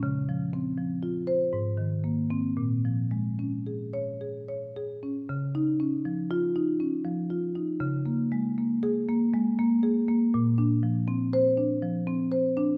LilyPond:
<<
  \new Staff \with { instrumentName = "Marimba" } { \time 5/4 \key bes \minor \tempo 4 = 119 r2 r8 c''8 r4. c'8 | r2 r8 des''4 r4. | \key des \major r2 f'4 r2 | r2 aes'4 r2 |
r2 c''4 r2 | }
  \new Staff \with { instrumentName = "Marimba" } { \time 5/4 \key bes \minor des8 f8 c'8 f8 f'4 aes,8 ees8 bes4 | bes,8 f8 aes8 des'8 aes'4 aes'8 des''8 aes'8 des'8 | \key des \major des8 ees'8 des'8 f4 ees'8 des'8 f8 f'8 ees'8 | des8 bes8 aes8 bes4 bes8 aes8 bes8 aes'8 bes8 |
bes,8 d'8 f8 c'4 d'8 f8 c'8 c''8 d'8 | }
>>